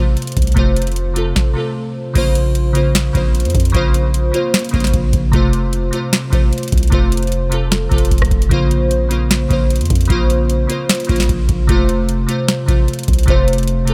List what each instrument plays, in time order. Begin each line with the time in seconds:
Already playing: 808-style bass A1, synth keys C3 A3 F4
0.00 synth keys C5
0.17 closed hi-hat
0.22 closed hi-hat
0.27 closed hi-hat
0.32 closed hi-hat
0.37 808-style bass C2, kick, closed hi-hat
0.42 closed hi-hat
0.47 closed hi-hat
0.52 synth keys C3 A3, closed hi-hat
0.57 808-style bass F1, synth keys F4 C5, kick, closed hi-hat
0.76 closed hi-hat
0.82 closed hi-hat
0.87 closed hi-hat
0.92 closed hi-hat
0.96 closed hi-hat
1.14 synth keys C3 A3 F4, closed hi-hat
1.18 synth keys A4
1.36 kick, snare
1.54 synth keys C3 A3 F4
1.58 synth keys A4
2.13 808-style bass A#1, synth keys C#3 A#3 F4, kick, closed hi-hat, crash
2.18 synth keys C5
2.35 closed hi-hat
2.55 closed hi-hat
2.73 synth keys C#3 A#3 F4, closed hi-hat
2.77 synth keys C5
2.95 snare, closed hi-hat
3.13 808-style bass A#1, synth keys C#3 A#3 F4, kick, closed hi-hat
3.17 synth keys C5
3.35 closed hi-hat
3.40 closed hi-hat
3.45 808-style bass F2, closed hi-hat
3.50 closed hi-hat
3.55 808-style bass F2, kick, closed hi-hat
3.60 closed hi-hat
3.65 closed hi-hat
3.70 synth keys C#3 A#3, closed hi-hat
3.74 808-style bass A#1, synth keys F4 C5, kick, closed hi-hat
3.94 closed hi-hat
4.14 closed hi-hat
4.32 synth keys C#3 A#3 F4, closed hi-hat
4.36 synth keys C5
4.54 snare, closed hi-hat
4.59 closed hi-hat
4.65 closed hi-hat
4.69 synth keys C#3 A#3, closed hi-hat
4.74 808-style bass A#1, synth keys F4 C5, kick, closed hi-hat
4.80 snare, closed hi-hat
4.87 closed hi-hat
4.94 808-style bass A#1, kick, closed hi-hat
5.13 808-style bass A#1, kick, closed hi-hat
5.32 808-style bass F1, synth keys C3 A3 F4, kick, closed hi-hat
5.36 synth keys C5
5.53 closed hi-hat
5.73 closed hi-hat
5.91 synth keys C3 A3 F4, closed hi-hat
5.95 synth keys C5
6.13 snare, closed hi-hat
6.30 808-style bass A1, synth keys C3 A3 F4, kick, closed hi-hat
6.35 synth keys C5
6.53 closed hi-hat
6.58 closed hi-hat
6.63 closed hi-hat
6.68 closed hi-hat
6.72 808-style bass C2, kick, closed hi-hat
6.78 closed hi-hat
6.83 closed hi-hat
6.88 synth keys C3 A3, closed hi-hat
6.92 808-style bass F1, synth keys F4 C5, kick, closed hi-hat
7.12 closed hi-hat
7.17 closed hi-hat
7.23 closed hi-hat
7.27 closed hi-hat
7.32 closed hi-hat
7.49 synth keys C3 A3 F4, closed hi-hat
7.54 synth keys A4
7.72 snare, closed hi-hat
7.89 808-style bass F1, synth keys C3 A3 F4, kick, closed hi-hat
7.94 synth keys A4
7.98 closed hi-hat
8.05 closed hi-hat
8.11 808-style bass F1, kick, closed hi-hat
8.18 808-style bass F1, kick, cross-stick, closed hi-hat
8.25 closed hi-hat
8.31 808-style bass F1, kick, closed hi-hat
8.42 closed hi-hat
8.49 808-style bass A#1, synth keys C#3 A#3 F4, kick, closed hi-hat
8.54 synth keys C5
8.71 closed hi-hat
8.91 closed hi-hat
9.09 synth keys C#3 A#3 F4, closed hi-hat
9.13 synth keys C5
9.31 snare, closed hi-hat
9.48 808-style bass A#1, synth keys C#3 A#3 F4, kick, closed hi-hat
9.53 synth keys C5
9.70 closed hi-hat
9.76 closed hi-hat
9.81 808-style bass F2, closed hi-hat
9.85 closed hi-hat
9.90 808-style bass F2, kick, closed hi-hat
9.95 closed hi-hat
10.01 closed hi-hat
10.05 synth keys C#3 A#3, closed hi-hat
10.10 808-style bass A#1, synth keys F4 C5, kick, closed hi-hat
10.30 closed hi-hat
10.50 closed hi-hat
10.67 synth keys C#3 A#3 F4, closed hi-hat
10.72 synth keys C5
10.89 snare, closed hi-hat
10.95 closed hi-hat
11.00 closed hi-hat
11.05 synth keys C#3 A#3, closed hi-hat
11.09 808-style bass A#1, synth keys F4 C5, kick, closed hi-hat
11.16 snare, closed hi-hat
11.23 closed hi-hat
11.29 808-style bass A#1, kick, closed hi-hat
11.49 808-style bass A#1, kick, closed hi-hat
11.67 808-style bass F1, synth keys C3 A3 F4, kick, closed hi-hat
11.72 synth keys C5
11.89 closed hi-hat
12.09 closed hi-hat
12.27 synth keys C3 A3 F4, closed hi-hat
12.31 synth keys C5
12.48 snare, closed hi-hat
12.66 808-style bass A1, synth keys C3 A3 F4, kick, closed hi-hat
12.71 synth keys C5
12.88 closed hi-hat
12.94 closed hi-hat
12.99 closed hi-hat
13.03 closed hi-hat
13.08 808-style bass C2, kick, closed hi-hat
13.13 closed hi-hat
13.19 closed hi-hat
13.23 synth keys C3 A3, closed hi-hat
13.28 808-style bass F1, synth keys F4 C5, kick, closed hi-hat
13.48 closed hi-hat
13.53 closed hi-hat
13.58 closed hi-hat
13.63 closed hi-hat
13.68 closed hi-hat
13.85 synth keys C3 A3 F4, closed hi-hat
13.90 synth keys A4